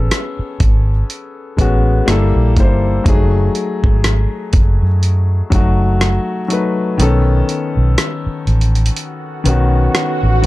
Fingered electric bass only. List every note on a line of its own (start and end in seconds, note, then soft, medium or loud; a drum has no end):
0.39 muted fingered electric bass stroke soft
0.60 1.02 G#1 medium
1.58 2.00 A1 loud
2.08 2.32 G1 medium
2.36 2.57 A#1 medium
2.57 2.98 G1 medium
3.06 3.47 F#1 loud
3.84 4.25 G#1 medium
4.54 4.78 F#1 medium
4.82 5.41 F#2 medium
5.52 6.17 F#1 medium
6.99 7.41 B1 loud
7.77 7.94 B1 medium
8.27 muted fingered electric bass stroke soft
8.47 8.89 A1 medium
9.46 9.87 B1 medium
10.23 10.40 A1 medium